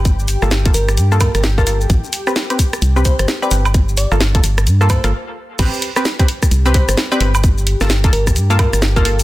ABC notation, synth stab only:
X:1
M:4/4
L:1/16
Q:"Swing 16ths" 1/4=130
K:Aphr
V:1 name="Synth stab"
z3 [B,FA] z [B,FA] z3 [B,FA] [B,FA]3 [B,FA] [B,FA] z | z3 [CG=B] z [CGB] z3 [CGB] [CGB]3 [CGB] [CGB] z | z3 [B,FA] z [B,FA] z3 [B,FA] B, [B,FA] z4 | [CG=B]3 [CGB] z [CGB] z3 [CGB] [CGB]3 [CGB] [CGB] z |
z3 [B,FA] z [B,FA] z3 [B,FA] [B,FA]3 [B,FA] [B,FA] z |]